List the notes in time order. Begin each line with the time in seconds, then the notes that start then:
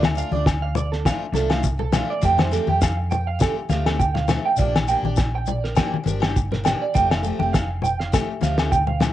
Already playing: D2
0.03 snare, high conga, low agogo
0.15 D4 F4 F5, muted steel-string acoustic guitar stroke, shekere
0.31 D2 D4 F4 D5, high conga
0.36 A3
0.46 kick, snare, low agogo, shekere
0.62 F5
0.75 D5, low conga, shekere
0.92 A4, snare
1.05 F3 A3 D4 F4 F5, kick, snare, low agogo, shekere
1.32 C2 F3 A3 D4 A4, snare, high conga, shekere
1.37 F4
1.49 A3 D4 F4 F5, snare, low agogo
1.63 kick, shekere
1.79 A4, low conga
1.92 F3 A3 D4 F4 F5, snare, low conga, low agogo, shekere
2.10 D5
2.22 F2 F3 A3 C4 G4 G5, kick, shekere
2.38 C5, snare, high conga, low agogo
2.51 F3 A3 C4 G4 A4, snare, shekere
2.67 F2 A3 G4 G5, high conga
2.82 F5, kick, snare, low agogo, shekere
3.11 G5, low conga, shekere
3.27 F5
3.39 F3 A3 C4 G4 A4, kick, snare, low agogo, shekere
3.69 D2 F3 A3 C4 G4 F5, snare, high conga, shekere
3.86 A3 C4 G4 A4, snare, low agogo
3.99 G5, kick, shekere
4.14 F5, snare, low conga
4.28 F3 A3 C4, snare, low conga, low agogo, shekere
4.45 G5
4.57 A#1 F3 A#3 D4 D5, kick, shekere
4.61 G4
4.76 snare, high conga, low agogo
4.88 F3 A#3 D4 G4 G5, shekere
5.03 A#1 D4 G4 D5, high conga
5.16 kick, snare, low agogo, shekere
5.35 G5
5.46 D5, low conga, shekere
5.64 A#4, snare
5.75 F3 A#3 D4 G4 G5, kick, snare, low agogo, shekere
5.94 high conga
6.03 G1 F3 D4 G4 A#4, high conga, shekere
6.20 A#3 D4 G4 G5, snare, low agogo
6.36 kick, shekere
6.52 A#4, snare, low conga
6.64 F3 A#3 D4 G4 G5, snare, low conga, low agogo, shekere
6.81 D5
6.94 F1 F3 A3 C4 G4 G5, kick, shekere
7.11 F5, snare, low agogo
7.23 F3 A3 C4 G4 A4, shekere
7.39 F1 A3 C4 G4 G5, high conga
7.53 F5, kick, snare, low agogo, shekere
7.82 G5, low conga, shekere
7.99 F5, snare
8.12 F3 A3 C4 G4 A4, kick, snare, low agogo, shekere
8.41 D2 F3 A3 C4 G4 F5, snare, high conga, shekere
8.58 A3 C4 G4 A4, snare, low agogo
8.71 G5, kick, shekere
8.87 F5, low conga
9.00 F3 A3 C4 G4, snare, low conga, low agogo, shekere